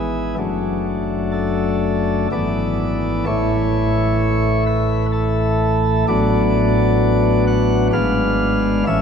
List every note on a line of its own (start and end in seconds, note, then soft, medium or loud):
0.00 0.34 G#1 medium
0.00 0.34 G#2 medium
0.00 0.34 E3 soft
0.00 0.35 B3 soft
0.00 0.35 E4 soft
0.00 0.35 G#4 medium
0.38 2.28 F#1 medium
0.38 2.28 F#2 medium
0.38 2.27 F#3 soft
0.38 2.27 A3 soft
0.38 2.28 D4 soft
1.32 2.28 A4 medium
2.32 3.24 G#1 medium
2.32 3.24 G#2 medium
2.32 3.24 E3 soft
2.32 3.24 B3 soft
2.32 3.24 E4 soft
2.32 3.24 D5 medium
3.26 6.04 A1 medium
3.26 6.04 A2 medium
3.26 6.04 E3 soft
3.26 6.04 A3 medium
3.26 6.04 E4 soft
3.26 4.63 C#5 loud
4.67 5.06 B4 medium
5.12 6.05 A4 loud
6.08 7.90 A1 medium
6.08 7.90 A2 medium
6.08 7.90 F#3 medium
6.08 7.90 B3 medium
6.08 7.90 D4 medium
6.08 7.44 D5 loud
7.47 7.87 F#5 loud
7.93 8.84 G#1 medium
7.93 8.84 G#2 medium
7.93 8.84 G#3 medium
7.93 8.84 B3 medium
7.93 8.84 D4 medium
7.93 8.84 F5 loud
8.87 9.02 A1 medium
8.87 9.02 A2 medium
8.87 9.02 E3 medium
8.87 9.02 A3 medium
8.87 9.02 C#4 medium
8.87 9.02 E5 loud